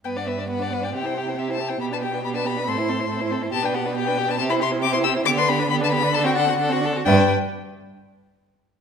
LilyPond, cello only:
\new Staff \with { instrumentName = "Cello" } { \clef bass \time 4/4 \key g \major \tempo 4 = 137 g,2 c2 | b,2 a,2 | b,2 c2 | d2.~ d8 r8 |
g,8 r2. r8 | }